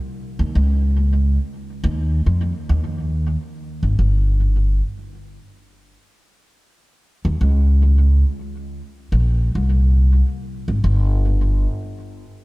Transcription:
upright bass
0.39 D#2
0.55 C#2
1.84 D#2
2.26 F2
2.69 D#2
3.83 G#1
3.99 G1
7.25 D#2
7.41 C#2
9.12 A#1
9.55 C2
10.68 G#1
10.84 G1

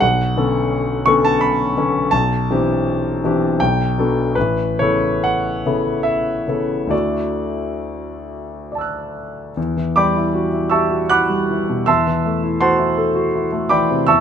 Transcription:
grand piano
0.00 B1 F#5
0.37 D3 B3 C#4 A4
1.06 D3 B3 C#4 A4 C#6
1.25 A5
1.41 B5
1.77 D3 B3 C#4 A4
2.11 B1 A5
2.51 E3 C4 D4 G4
3.24 E3 C4 D4 G4
3.60 B1 G5
3.98 F#3 B3 D4 A4
4.35 A1 B4
4.79 C#3 B3 E4 A4 C#5
5.24 F#5
5.66 C#3 B3 E4 A4
6.03 E5
6.48 C#3 B3 E4 A4
6.87 D2 D3 A3 E4 D5
6.91 F#4
8.72 D5 A5
8.78 E6 F#6
9.57 E2
9.77 E3
9.96 G3 D5 G5 B5 D6
10.17 E4
10.34 F#4
10.52 E4
10.70 G4 E5 A5 C#6 E6
10.90 F#4
11.10 E4 F#5 B5 D6 F#6
11.29 G3
11.51 E3
11.69 B2
11.86 E2 E5 A5 C6 E6
12.07 E3
12.25 A3
12.44 E4
12.61 F#4 C5 F#5 A5 C6
12.79 E4
12.98 A4
13.15 F#4
13.35 E4
13.52 A3
13.69 E3 D5 G5 B5 D6
13.90 C3
14.07 E2 E5 A5 C#6 E6

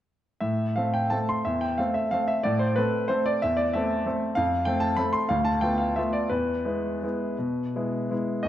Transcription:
grand piano
0.40 A2 E5
0.76 A3 C4 A4 F5
0.94 G5
1.10 A3 C4 A4 A5
1.29 C6
1.45 E2 E5
1.61 G5
1.78 A3 C4 A4 F5
1.94 E5
2.11 A3 C4 A4 F5
2.28 E5
2.43 A2 D5
2.59 C5
2.76 A3 C4 A4 B4
3.08 A3 C4 A4 C5
3.26 D5
3.42 E2 E5
3.57 D5
3.73 A3 C4 A4 E5
4.06 A3 C4 A4
4.35 F2 F5
4.65 A3 C4 A4 G5
4.80 A5
4.96 A3 C4 A4 B5
5.13 C6
5.29 D2 F5
5.45 A5
5.61 A3 B3 F4 G5
5.78 F5
5.96 A3 B3 F4 E5
6.13 D5
6.30 E2 B4
6.65 G#3 B3 E4
7.03 G#3 B3 E4
7.39 B2
7.76 G#3 B3 E4
8.11 G#3 B3 E4
8.43 D#2 D#5

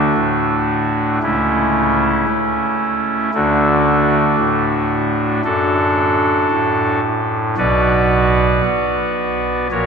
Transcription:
pipe organ
Already playing: D2 D3 A3 D4 F#4
0.17 A2
1.23 C#2 C#3 A3 C#4 E4
2.28 C#4
3.34 D2 D3 A3 D4 F#4
4.39 A2
5.44 F#2 D4 F#4 A4
6.51 A2
7.57 B1 B2 F#4 B4 D5
8.64 B3
9.71 A#1 A#2 F#4 A#4 C#5

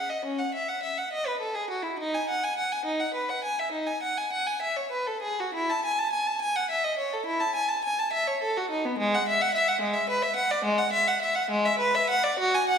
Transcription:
violin
Already playing: F#5
0.10 D#5
0.25 C#4
0.39 F#5
0.54 E5
0.68 F#5
0.83 E5
0.98 F#5
1.13 D#5
1.27 B4
1.40 A4
1.55 G#4
1.70 F#4
1.83 E4
1.99 D#4
2.14 G#5
2.29 F#5
2.44 G#5
2.58 F#5
2.72 G#5
2.85 D#4
3.00 F#5
3.14 B4
3.29 F#5
3.44 G#5
3.59 E5
3.72 D#4
3.87 G#5
4.02 F#5
4.17 G#5
4.32 F#5
4.47 G#5
4.61 E5
4.77 C#5
4.91 B4
5.07 A4
5.22 G#4
5.40 F#4
5.54 E4
5.70 A5
5.85 G#5
5.98 A5
6.13 G#5
6.27 A5
6.41 G#5
6.56 F#5
6.70 E5
6.84 D#5
6.98 C#5
7.13 A4
7.26 E4
7.40 A5
7.55 G#5
7.69 A5
7.84 G#5
7.99 A5
8.13 E5
8.28 C#5
8.42 A4
8.57 F#4
8.70 D#4
8.85 B3
8.98 G#3
9.14 F#5
9.28 E5
9.41 F#5
9.54 E5
9.68 F#5
9.81 G#3
9.94 E5
10.09 B4
10.22 E5
10.36 F#5
10.51 D5
10.64 G#3
10.78 F#5
10.93 E5
11.08 F#5
11.22 E5
11.35 F#5
11.50 G#3
11.66 E5
11.79 B4
11.95 E5
12.10 F#5
12.24 D5
12.39 F#4
12.55 G#5
12.69 F#5

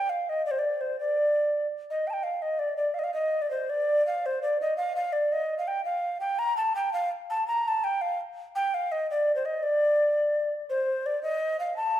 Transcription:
recorder
Already playing: G5
0.09 F5
0.29 D#5
0.46 D5
0.51 C5
0.59 D5
0.81 C5
1.00 D5
1.90 D#5
2.07 G5 A5
2.13 G5
2.23 F5
2.42 D#5
2.59 D5
2.77 D5
2.94 F5
2.99 D#5
3.04 F5
3.14 D#5
3.42 D5
3.51 C5
3.70 D5
4.07 F5
4.26 C5
4.42 D5
4.61 D#5
4.77 F5
4.96 F5
5.13 D5
5.32 D#5
5.58 F5
5.68 G5
5.85 F5
6.20 G5
6.39 A#5
6.57 A5
6.75 G5
6.93 F5
7.30 A5
7.48 A#5
7.68 A5
7.84 G5
8.01 F5
8.56 G5
8.74 F5
8.92 D#5
9.11 D5
9.35 C5
9.45 D#5
9.63 D5
10.70 C5
11.06 D5
11.23 D#5
11.60 F5
11.77 A5

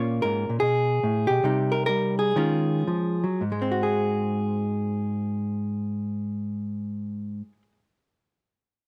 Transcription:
hollow-body jazz guitar
Already playing: A#2 A#3 C#4 F4 C#5
0.22 G#2 A#4
0.49 A#2
0.60 B2 G#4
1.03 A2
1.27 B2 G4
1.44 C3 G3 D#4
1.72 A#4
1.86 G3 A#4
2.19 G#4
2.36 D#3 G#3 C#4 F4
2.87 F3
3.24 F#3
3.41 G#2
3.52 G#3
3.62 C4
3.72 F#4
3.83 G#4

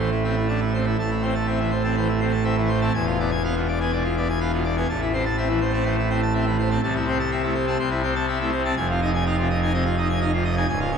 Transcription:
pipe organ
Already playing: A1 A2
0.11 E4
0.24 C4 E5
0.36 E4
0.48 D4 A5
0.61 E4
0.74 C4 C5
0.86 E4
0.98 A1 A2 A5
1.11 E4
1.22 C4 C5
1.35 A5
1.47 C4 E5
1.59 E3 E4
1.71 C5
1.84 C4 A5
1.97 E3 C5
2.08 E4
2.20 C4 C5
2.32 A5
2.44 C4 E5
2.57 E3 E4
2.69 C5
2.81 C4 A5
2.94 E1 E2 G#5
3.07 F4
3.20 B3 D5
3.31 G#5
3.44 B3 F5
3.57 B2 F4
3.68 D5
3.81 B3 G#5
3.92 B2 D5
4.04 F4
4.17 B3 D5
4.29 G#5
4.40 B3 F5
4.53 B2 F4
4.65 D5
4.77 B3 G#5
4.89 A1 A2 A5
5.02 E4
5.13 C4 C5
5.25 A5
5.37 C4 E5
5.49 E3 E4
5.61 C5
5.73 C4 A5
5.85 E3 C5
5.98 E4
6.10 C4 C5
6.23 A5
6.34 C4 E5
6.46 E3 E4
6.58 C5
6.70 C4 A5
6.83 C2 C3 A5
6.95 E4
7.07 C4 C5
7.20 A5
7.31 C4 E5
7.43 A3 E4
7.55 C5
7.67 C4 A5
7.79 C2 C3 C5
7.91 E4
8.03 C4 C5
8.15 A5
8.28 C4 E5
8.40 A3 E4
8.52 C5
8.65 C4 A5
8.77 F1 F2 G#5
8.90 F4
9.02 D#4 D#5
9.15 G#5
9.26 D#4 F5
9.38 C3 F4
9.50 D#5
9.63 D#4 G#5
9.74 C3 D#5
9.86 F4
9.97 D#4 D#5
10.09 G#5
10.21 D#4 F5
10.33 C3 F4
10.45 D#5
10.57 D#4 G#5
10.68 C#1 C#2 G#5
10.80 F4
10.92 C#4 C#5

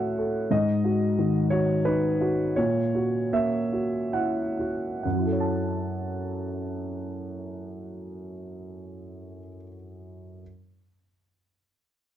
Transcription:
grand piano
Already playing: A2 A3 F#4 A4 C#5 E5 F#5
0.18 A4
0.50 G#2 D#5
0.84 F#4
1.18 D#3
1.50 F#4 C#5
1.85 D#4 B4
2.21 F#4
2.56 A#2 C#5
2.95 F#4
3.33 A#3 E5
3.73 F#4
4.13 E4 F#5
4.59 F#4
5.03 F#2 F#5
5.12 F#3
5.19 E4
5.26 A4
5.32 C#5
5.40 A5

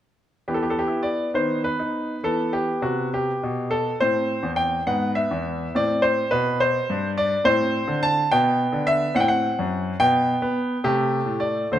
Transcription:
grand piano
0.48 E3 B3 G4
0.54 A4
0.63 G4
0.70 A4
0.79 G4
0.87 E4
1.03 D5
1.34 D#3 B3 C5
1.64 B4
1.79 D#4
2.23 E3 B3 A4
2.53 G4
2.82 C3 F#4
3.14 G4
3.43 B2
3.71 A4
4.00 A2 C4 C5
4.43 E2
4.56 G5
4.87 G#2 B3 F#5
5.15 E5
5.31 E2
5.75 A2 C4 D5
6.02 C5
6.31 B2 B4
6.60 C5
6.90 G2
7.18 D5
7.44 A2 C4 C5
7.88 D3
8.03 A5
8.31 B2 B3 G5
8.72 D3
8.87 E5
9.15 A2 C4 F#5
9.20 G5
9.28 F#5
9.59 F#2
10.00 B2 B3 G5
10.42 B3
10.84 C3 A3 G4
11.25 A2
11.40 D5
11.72 D3 A3 C5

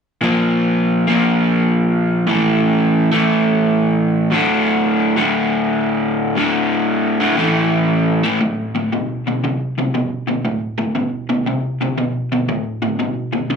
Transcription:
overdriven electric guitar
0.21 A#2 F3 A#3
1.07 A#2 F3 A#3
2.27 A2 E3 A3
3.12 A2 E3 A3
4.31 D2 A2 D3
5.16 D2 A2 D3
6.35 D2 A2 D3
7.20 D2 A2 D3
7.37 A2 E3 A3
8.23 A2 E3 A3
8.41 D2 A2
8.75 D2 A2
8.92 D2 B2
9.27 D2 B2
9.44 D2 C3
9.78 D2 C3
9.94 D2 B2
10.27 D2 B2
10.45 D2 A2
10.78 D2 A2
10.95 D2 B2
11.29 D2 B2
11.46 D2 C3
11.81 D2 C3
11.98 D2 B2
12.32 D2 B2
12.49 D2 A2
12.82 D2 A2
12.99 D2 B2
13.33 D2 B2
13.50 D2 C3

